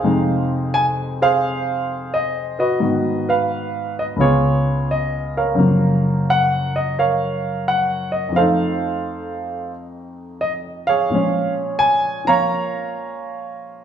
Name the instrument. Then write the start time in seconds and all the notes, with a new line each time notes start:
grand piano
Already playing: G#4 C5 F5
0.03 F2 C3 G#3 D#4
0.74 G#5
1.22 G#4 C5 F5
2.14 D#5
2.59 F#4 B4 D#5
2.80 G#2 D#3 B3 F#4
3.29 B4 F5
3.99 D#5
4.16 C#2 C#3 B3
4.20 F4 G#4 C#5
4.91 D#5
5.37 A#4 C#5 F5
5.55 F#2 C#3 A#3
5.60 F3
6.30 F#5
6.76 D#5
6.99 A#4 C#5 F5
7.68 F#5
8.12 D#5
8.29 F2 F3
8.36 A3 A4 C5 F5
8.40 D#4
10.41 D#5
10.87 G#4 C#5 F5
11.10 A#2 F3 G#3
11.15 C#4
11.79 G#5
12.25 F3 A#3 F5 A#5
12.29 C#5